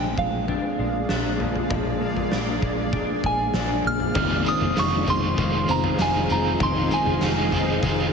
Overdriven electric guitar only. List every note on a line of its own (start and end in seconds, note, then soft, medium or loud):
4.15 4.46 F3 medium
4.15 4.46 G#3 medium
4.15 4.47 D#4 medium
4.15 4.45 F4 medium
4.15 4.43 C5 medium
4.45 4.76 D#4 soft
4.45 4.77 F4 medium
4.45 4.76 C5 medium
4.76 5.07 F3 medium
4.76 5.07 G#3 medium
4.76 5.08 D#4 medium
4.76 5.07 F4 medium
5.06 5.37 D#4 soft
5.06 5.39 F4 medium
5.06 5.37 C5 medium
5.37 5.68 G#3 medium
5.37 5.69 D#4 medium
5.37 5.69 F4 medium
5.37 5.67 C5 medium
5.68 5.99 D#4 soft
5.68 5.99 F4 soft
5.68 5.99 C5 medium
5.99 6.30 F3 medium
5.99 6.30 G#3 medium
5.99 6.30 D#4 medium
5.99 6.30 F4 medium
5.99 6.28 C5 medium
6.29 6.60 D#4 soft
6.29 6.61 F4 medium
6.29 6.60 C5 medium
6.60 6.91 F3 medium
6.60 6.91 G#3 medium
6.60 6.92 D#4 medium
6.60 6.91 F4 medium
6.60 6.89 C5 medium
6.90 7.22 D#4 soft
6.90 7.22 F4 soft
6.90 7.21 C5 medium
7.21 7.52 F3 medium
7.21 7.53 G#3 medium
7.21 7.53 D#4 medium
7.21 7.52 F4 medium
7.21 7.50 C5 medium
7.51 7.82 D#4 soft
7.51 7.84 F4 soft
7.51 7.83 C5 medium
7.82 8.13 G#3 medium
7.82 8.13 D#4 medium
7.82 8.13 F4 medium
7.82 8.12 C5 medium